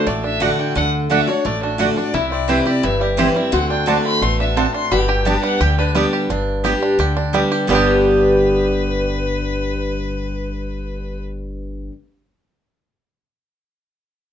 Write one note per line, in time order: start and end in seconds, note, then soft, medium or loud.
0.00 0.23 D4 medium
0.00 2.10 F#4 medium
0.07 0.51 A1 medium
0.07 0.72 A2 medium
0.07 0.55 A3 medium
0.07 0.24 D5 medium
0.24 0.41 D4 soft
0.24 0.43 E5 medium
0.40 0.74 D3 medium
0.40 0.74 A3 medium
0.40 0.50 A3 medium
0.40 0.74 D4 medium
0.40 0.58 D4 medium
0.40 0.50 F#4 medium
0.40 0.74 F#4 loud
0.40 0.50 D5 medium
0.40 0.61 F#5 medium
0.40 0.50 F#5 medium
0.59 0.75 D4 medium
0.59 0.76 G5 medium
0.75 1.20 D2 medium
0.75 1.08 D3 medium
0.75 1.10 D4 medium
0.75 0.86 F#5 loud
1.10 1.27 D3 medium
1.10 1.19 A3 medium
1.10 1.27 A3 medium
1.10 1.27 D4 medium
1.10 1.19 F#4 medium
1.10 1.26 F#4 medium
1.10 1.20 D5 medium
1.10 1.29 E5 medium
1.10 1.20 F#5 medium
1.27 1.62 D4 medium
1.27 1.45 D4 medium
1.27 1.44 F#4 medium
1.27 1.47 C#5 medium
1.45 1.89 A1 medium
1.45 2.11 A2 loud
1.45 1.94 A3 medium
1.45 1.63 D5 loud
1.63 1.79 D4 medium
1.63 1.81 F#4 medium
1.78 1.96 D3 medium
1.78 1.88 A3 medium
1.78 1.96 A3 medium
1.78 1.96 D4 loud
1.78 1.96 D4 medium
1.78 1.89 F#4 medium
1.78 1.95 F#4 loud
1.78 1.96 A4 medium
1.78 1.89 D5 medium
1.78 1.89 F#5 medium
1.96 2.14 D4 medium
1.96 2.14 D4 soft
1.96 2.13 F#4 medium
1.96 2.16 D5 medium
2.14 2.58 C2 loud
2.14 2.80 C3 medium
2.14 3.57 E4 medium
2.14 2.63 E4 medium
2.14 2.31 E5 medium
2.32 3.53 C4 soft
2.32 2.51 D5 medium
2.48 2.65 E3 medium
2.48 2.66 G3 medium
2.48 2.98 G3 medium
2.48 2.58 C4 medium
2.48 2.66 C4 loud
2.48 2.58 E4 medium
2.48 2.64 E4 medium
2.48 2.66 B4 medium
2.48 2.58 C5 loud
2.48 2.58 G5 medium
2.66 2.84 C4 medium
2.66 2.83 E4 medium
2.66 3.15 G4 medium
2.66 2.86 D5 medium
2.83 3.28 G1 medium
2.83 3.49 G2 loud
2.83 3.32 E4 medium
2.83 3.01 E5 loud
3.01 3.35 G3 medium
3.01 3.20 G4 medium
3.17 3.34 E3 medium
3.17 3.35 G3 medium
3.17 3.27 C4 loud
3.17 3.35 C4 medium
3.17 3.28 E4 medium
3.17 3.33 E4 loud
3.17 3.53 G4 medium
3.17 3.35 C5 medium
3.17 3.28 C5 loud
3.17 3.28 G5 medium
3.34 3.53 G3 medium
3.34 3.53 C4 soft
3.34 3.52 E4 medium
3.34 3.53 E5 medium
3.52 3.97 D2 loud
3.52 3.85 D3 loud
3.52 4.02 C4 medium
3.52 4.91 F#4 medium
3.52 3.69 F#5 loud
3.69 3.88 D4 soft
3.69 3.88 G5 medium
3.86 4.20 D3 medium
3.86 4.20 A3 medium
3.86 3.96 C4 medium
3.86 4.21 C4 medium
3.86 4.40 D4 medium
3.86 3.96 F#4 medium
3.86 4.21 F#4 loud
3.86 3.97 D5 medium
3.86 4.04 A5 medium
3.86 3.97 A5 loud
4.04 4.54 C4 medium
4.04 4.23 B5 loud
4.22 4.66 A1 medium
4.22 4.71 A3 medium
4.22 4.55 B3 medium
4.22 4.39 C6 loud
4.40 4.74 D4 medium
4.40 4.58 E5 medium
4.56 4.90 A2 medium
4.56 4.66 C4 medium
4.56 4.92 C4 medium
4.56 4.66 F#4 loud
4.56 4.66 D5 medium
4.56 4.74 A5 medium
4.56 4.66 A5 medium
4.74 5.26 D4 medium
4.74 4.92 C6 loud
4.91 5.36 G1 medium
4.91 5.57 G2 medium
4.91 5.40 G3 medium
4.91 6.09 G4 medium
4.91 5.10 B5 medium
5.08 5.57 G4 medium
5.08 5.27 G5 medium
5.25 5.59 G3 medium
5.25 5.35 B3 medium
5.25 5.59 B3 medium
5.25 5.75 D4 medium
5.25 5.59 D4 medium
5.25 5.35 G4 medium
5.25 5.60 G4 medium
5.25 5.35 D5 medium
5.25 5.35 G5 medium
5.25 5.43 A5 loud
5.43 5.92 G3 medium
5.43 5.62 F#5 loud
5.60 6.05 D2 medium
5.60 6.27 D3 medium
5.60 6.09 G4 medium
5.60 5.77 G5 loud
5.78 6.27 D4 medium
5.78 5.88 B4 medium
5.95 6.28 G3 medium
5.95 6.30 G3 medium
5.95 6.04 B3 medium
5.95 6.28 B3 medium
5.95 6.29 D4 loud
5.95 6.04 G4 medium
5.95 6.29 G4 loud
5.95 6.05 D5 medium
5.95 6.05 G5 loud
6.13 6.30 G4 medium
6.29 6.74 G1 medium
6.29 6.96 G2 loud
6.29 6.79 D4 medium
6.64 6.97 G3 medium
6.64 6.73 B3 medium
6.64 6.98 B3 medium
6.64 6.98 D4 medium
6.64 6.73 G4 medium
6.64 6.99 G4 medium
6.64 6.98 G4 medium
6.64 6.74 D5 medium
6.64 6.74 G5 medium
6.83 7.15 D4 medium
6.98 7.43 D2 medium
6.98 7.65 D3 loud
6.98 7.48 G4 medium
7.17 7.65 D4 medium
7.33 7.66 G3 medium
7.33 7.68 G3 medium
7.33 7.43 B3 medium
7.33 7.67 B3 medium
7.33 7.67 D4 medium
7.33 7.43 G4 medium
7.33 7.68 G4 medium
7.33 7.43 D5 medium
7.33 7.43 G5 loud
7.52 7.69 G4 medium
7.67 11.88 G1 loud
7.67 11.90 G2 medium
7.67 11.91 D3 medium
7.67 11.92 G3 medium
7.67 11.88 G3 medium
7.67 11.91 B3 medium
7.67 11.92 B3 medium
7.67 11.90 B3 medium
7.67 11.93 D4 loud
7.67 11.92 G4 medium
7.67 11.93 G4 loud
7.67 11.22 B4 medium
7.67 11.93 D5 loud
7.67 11.94 G5 loud
7.73 11.92 D4 medium
7.73 11.94 G4 medium